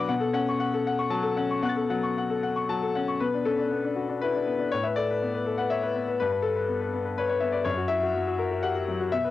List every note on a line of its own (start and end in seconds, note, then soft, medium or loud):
0.00 0.09 B2 medium
0.00 0.13 F#3 medium
0.00 0.10 D4 soft
0.00 0.13 B4 medium
0.00 0.09 F#5 medium
0.00 0.13 B5 medium
0.00 0.13 D6 medium
0.09 1.58 B2 medium
0.09 0.30 F#5 medium
0.20 0.42 A4 medium
0.33 0.75 C#4 medium
0.33 0.55 F#5 medium
0.49 0.68 C#6 medium
0.60 0.80 F#5 medium
0.74 0.94 A4 medium
0.87 1.07 F#5 medium
0.99 1.19 C#6 medium
1.10 1.52 F#3 medium
1.10 1.31 A5 medium
1.23 1.44 A4 soft
1.37 1.79 C#4 soft
1.37 1.58 F#5 soft
1.51 1.61 C#6 soft
1.62 3.17 B2 medium
1.62 1.84 F#5 medium
1.62 2.02 C#6 soft
1.62 3.18 F#6 soft
1.69 3.20 A6 soft
1.76 1.97 A4 soft
1.90 2.32 F#3 soft
1.90 2.11 F#5 medium
2.03 2.24 C#6 soft
2.18 2.38 F#5 soft
2.30 2.51 A4 soft
2.43 2.64 F#5 soft
2.56 2.77 C#6 soft
2.69 3.11 F#3 soft
2.69 2.90 A5 medium
2.83 3.03 A4 soft
2.95 3.21 C#4 soft
2.95 3.16 F#5 soft
3.08 3.21 C#6 soft
3.20 4.68 B2 soft
3.20 3.46 B4 medium
3.34 3.54 D4 soft
3.45 3.59 C#4 soft
3.45 4.21 A4 medium
3.59 3.79 D4 soft
3.70 3.91 B3 soft
3.84 4.04 D4 soft
3.96 4.16 F#4 soft
4.09 4.29 D4 soft
4.21 4.35 E4 soft
4.21 4.72 B4 medium
4.35 4.54 D4 soft
4.47 4.67 B3 soft
4.59 4.71 D4 soft
4.72 6.16 A2 soft
4.72 4.84 C#5 medium
4.84 5.05 B4 soft
4.84 4.96 E5 medium
4.96 5.09 A4 soft
4.96 5.58 D5 medium
5.11 5.30 B4 soft
5.22 5.42 B3 soft
5.34 5.54 B4 soft
5.46 5.66 A4 soft
5.58 5.78 B4 soft
5.58 5.70 F#5 soft
5.70 5.83 C#5 soft
5.70 6.19 E5 medium
5.83 6.03 B4 soft
5.96 6.15 B3 soft
6.08 6.18 B4 soft
6.20 7.63 G2 soft
6.20 6.30 B4 medium
6.32 6.51 B4 soft
6.42 7.17 A4 medium
6.56 6.76 B4 soft
6.69 6.88 B3 soft
6.81 7.00 B4 soft
6.94 7.13 B3 soft
7.05 7.16 B4 soft
7.18 7.29 B4 medium
7.18 7.28 C#5 soft
7.29 7.49 B4 soft
7.29 7.42 C#5 soft
7.41 7.61 B3 soft
7.41 7.53 E5 soft
7.52 7.66 B4 soft
7.52 7.65 D5 soft
7.65 9.07 F#2 soft
7.65 7.90 C#5 medium
7.77 7.97 F#4 soft
7.88 8.02 E4 soft
7.88 8.62 E5 medium
8.03 8.22 F#4 soft
8.15 8.34 F#3 soft
8.27 8.46 F#4 soft
8.39 8.58 A#4 soft
8.51 8.70 F#4 soft
8.63 8.75 G4 soft
8.63 9.12 F#5 medium
8.75 8.95 F#4 soft
8.88 9.07 F#3 soft
9.00 9.12 F#4 soft
9.12 9.30 B2 soft
9.12 9.30 E5 medium
9.24 9.30 B4 soft